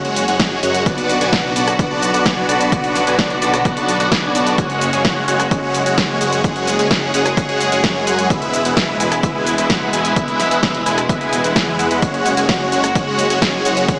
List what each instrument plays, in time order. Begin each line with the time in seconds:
Already playing: string section C#3 G#3 F#4
0.05 detuned saw bass F#1, supersaw synth G#3 C#4 F#4 C#5 F#5, open hi-hat
0.16 open hi-hat, shaker
0.28 detuned saw bass F#1, supersaw synth G#3 C#4 F#4 C#5 F#5, closed hi-hat, shaker
0.40 detuned saw bass F#1, supersaw synth G#3 C#4 F#4 C#5 G#5, kick, snare, closed hi-hat, shaker
0.63 detuned saw bass F#2, supersaw synth G#3 C#4 F#4 C#5 F#5, open hi-hat, shaker
0.75 closed hi-hat, shaker
0.86 detuned saw bass B1, string section D3 B3, supersaw synth B3 D4 F#4 D5 F#5, kick, closed hi-hat, shaker
0.98 open hi-hat
1.09 open hi-hat, shaker
1.21 detuned saw bass B1, supersaw synth B3 D4 F#4 D5 G#5, closed hi-hat, shaker
1.33 detuned saw bass B1, supersaw synth B3 D4 F#4 D5 F#5, kick, snare, closed hi-hat, shaker
1.56 detuned saw bass B1, supersaw synth B3 D4 F#4 D5 A5, open hi-hat, shaker
1.68 cross-stick, closed hi-hat, shaker
1.79 detuned saw bass B1, supersaw synth B3 D4 F#4 D5 F#5, kick, closed hi-hat, shaker
1.91 detuned saw bass B1, supersaw synth B3 D4 F#4 D5 A5
2.02 open hi-hat, shaker
2.14 detuned saw bass B1, supersaw synth B3 D4 F#4 D5 F#5, closed hi-hat, shaker
2.26 detuned saw bass B1, supersaw synth B3 D4 F#4 D5 G#5, kick, snare, closed hi-hat, shaker
2.49 detuned saw bass B1, supersaw synth B3 D4 F#4 D5 A5, open hi-hat, shaker
2.61 closed hi-hat, shaker
2.72 detuned saw bass B1, supersaw synth B3 D4 F#4 D5 F#5, kick, closed hi-hat, shaker
2.84 open hi-hat
2.95 snare, open hi-hat, shaker
3.07 detuned saw bass B1, supersaw synth B3 D4 F#4 D5 G#5, closed hi-hat, shaker
3.19 detuned saw bass B1, supersaw synth B3 D4 F#4 D5 F#5, kick, snare, closed hi-hat, shaker
3.30 closed hi-hat
3.42 detuned saw bass B1, supersaw synth B3 D4 F#4 D5 A5, open hi-hat, shaker
3.54 cross-stick, closed hi-hat, shaker
3.65 detuned saw bass B1, supersaw synth B3 D4 F#4 D5 F#5, kick, closed hi-hat, shaker
3.77 detuned saw bass B1, supersaw synth B3 D4 F#4 D5 A5, open hi-hat
3.88 open hi-hat, shaker
4.00 detuned saw bass B1, supersaw synth B3 D4 F#4 D5 F#5, closed hi-hat, shaker
4.12 detuned saw bass B1, supersaw synth B3 D4 F#4 D5 G#5, kick, snare, closed hi-hat, shaker
4.35 detuned saw bass B1, supersaw synth B3 D4 F#4 D5 A5, open hi-hat, shaker
4.47 closed hi-hat, shaker
4.58 detuned saw bass F#1, string section C#3 G#3, supersaw synth G#3 C#4 F#4 C#5 F#5, kick, closed hi-hat, shaker
4.70 open hi-hat
4.81 open hi-hat, shaker
4.93 detuned saw bass F#1, supersaw synth G#3 C#4 F#4 C#5 G#5, closed hi-hat, shaker
5.05 detuned saw bass F#1, supersaw synth G#3 C#4 F#4 C#5 F#5, kick, snare, closed hi-hat, shaker
5.28 detuned saw bass F#1, supersaw synth G#3 C#4 F#4 C#5 F#5, open hi-hat, shaker
5.40 cross-stick, closed hi-hat, shaker
5.51 detuned saw bass F#1, supersaw synth G#3 C#4 F#4 C#5 F#5, kick, closed hi-hat, shaker
5.63 detuned saw bass F#1, supersaw synth G#3 C#4 F#4 C#5 F#5
5.74 open hi-hat, shaker
5.86 detuned saw bass F#1, supersaw synth G#3 C#4 F#4 C#5 F#5, closed hi-hat, shaker
5.98 detuned saw bass F#1, supersaw synth G#3 C#4 F#4 C#5 G#5, kick, snare, closed hi-hat, shaker
6.21 detuned saw bass F#1, supersaw synth G#3 C#4 F#4 C#5 F#5, open hi-hat, shaker
6.33 closed hi-hat, shaker
6.44 detuned saw bass F#1, supersaw synth G#3 C#4 F#4 C#5 F#5, string section G#4, kick, closed hi-hat, shaker
6.56 open hi-hat
6.67 snare, open hi-hat, shaker
6.79 detuned saw bass F#1, supersaw synth G#3 C#4 F#4 C#5 G#5, closed hi-hat, shaker
6.91 detuned saw bass F#1, supersaw synth G#3 C#4 F#4 C#5 F#5, kick, snare, closed hi-hat, shaker
7.14 detuned saw bass F#1, supersaw synth G#3 C#4 F#4 C#5 F#5, open hi-hat, shaker
7.26 cross-stick, closed hi-hat, shaker
7.37 detuned saw bass F#1, supersaw synth G#3 C#4 F#4 C#5 F#5, kick, closed hi-hat, shaker
7.49 detuned saw bass F#1, supersaw synth G#3 C#4 F#4 C#5 F#5, open hi-hat
7.60 open hi-hat, shaker
7.72 detuned saw bass F#1, supersaw synth G#3 C#4 F#4 C#5 F#5, closed hi-hat, shaker
7.84 detuned saw bass F#2, supersaw synth G#3 C#4 F#4 C#5 G#5, kick, snare, closed hi-hat, shaker
8.07 detuned saw bass F#2, supersaw synth G#3 C#4 F#4 C#5 F#5, open hi-hat, shaker
8.19 closed hi-hat, shaker
8.30 detuned saw bass E1, string section B2 E4, supersaw synth G#3 B3 E4 B4 E5, kick, closed hi-hat, shaker
8.42 open hi-hat
8.53 open hi-hat, shaker
8.65 detuned saw bass E1, supersaw synth G#3 B3 E4 B4 F#5, closed hi-hat, shaker
8.77 detuned saw bass E1, supersaw synth G#3 B3 E4 B4 E5, kick, snare, closed hi-hat, shaker
9.00 detuned saw bass E1, supersaw synth G#3 B3 E4 B4 G#5, open hi-hat, shaker
9.12 cross-stick, closed hi-hat, shaker
9.23 detuned saw bass E1, supersaw synth G#3 B3 E4 B4 E5, kick, closed hi-hat, shaker
9.35 detuned saw bass E1, supersaw synth G#3 B3 E4 B4 G#5
9.47 open hi-hat, shaker
9.58 detuned saw bass E1, supersaw synth G#3 B3 E4 B4 E5, closed hi-hat, shaker
9.70 detuned saw bass E1, supersaw synth G#3 B3 E4 B4 F#5, kick, snare, closed hi-hat, shaker
9.93 detuned saw bass E1, supersaw synth G#3 B3 E4 B4 G#5, open hi-hat, shaker
10.05 closed hi-hat, shaker
10.16 detuned saw bass E1, supersaw synth G#3 B3 E4 B4 E5, kick, closed hi-hat, shaker
10.28 open hi-hat
10.40 snare, open hi-hat, shaker
10.51 detuned saw bass E1, supersaw synth G#3 B3 E4 B4 F#5, closed hi-hat, shaker
10.63 detuned saw bass E1, supersaw synth G#3 B3 E4 B4 E5, kick, snare, closed hi-hat, shaker
10.75 closed hi-hat
10.86 detuned saw bass E1, supersaw synth G#3 B3 E4 B4 G#5, open hi-hat, shaker
10.98 cross-stick, closed hi-hat, shaker
11.09 detuned saw bass E1, supersaw synth G#3 B3 E4 B4 E5, kick, closed hi-hat, shaker
11.21 detuned saw bass E1, supersaw synth G#3 B3 E4 B4 G#5, open hi-hat
11.33 open hi-hat, shaker
11.44 detuned saw bass E1, supersaw synth G#3 B3 E4 B4 F#5, closed hi-hat, shaker
11.56 detuned saw bass E2, supersaw synth G#3 B3 E4 B4 G#5, kick, snare, closed hi-hat, shaker
11.79 detuned saw bass E2, supersaw synth G#3 B3 E4 B4 F#5, open hi-hat, shaker
11.91 detuned saw bass E2, supersaw synth G#3 B3 E4 B4 F#5, closed hi-hat, shaker
12.02 detuned saw bass F#1, string section C#3 F#4, supersaw synth G#3 C#4 F#4 C#5 F#5, kick, closed hi-hat, ride, shaker
12.14 open hi-hat
12.26 open hi-hat, shaker
12.37 detuned saw bass F#1, supersaw synth G#3 C#4 F#4 C#5 G#5, closed hi-hat, shaker
12.49 detuned saw bass F#1, supersaw synth G#3 C#4 F#4 C#5 F#5, kick, snare, closed hi-hat, ride, shaker
12.72 detuned saw bass F#1, supersaw synth G#3 C#4 F#4 C#5 F#5, open hi-hat, shaker
12.84 cross-stick, closed hi-hat, shaker
12.95 detuned saw bass F#1, supersaw synth G#3 C#4 F#4 C#5 F#5, kick, closed hi-hat, ride, shaker
13.07 detuned saw bass F#1, supersaw synth G#3 C#4 F#4 C#5 F#5
13.19 open hi-hat, shaker
13.30 detuned saw bass F#1, supersaw synth G#3 C#4 F#4 C#5 F#5, closed hi-hat, shaker
13.42 detuned saw bass F#1, supersaw synth G#3 C#4 F#4 C#5 G#5, kick, snare, closed hi-hat, ride, shaker
13.65 detuned saw bass F#1, supersaw synth G#3 C#4 F#4 C#5 F#5, open hi-hat, shaker
13.77 closed hi-hat, shaker
13.88 detuned saw bass F#1, supersaw synth G#3 C#4 F#4 C#5 F#5, string section G#4, kick, closed hi-hat, ride, shaker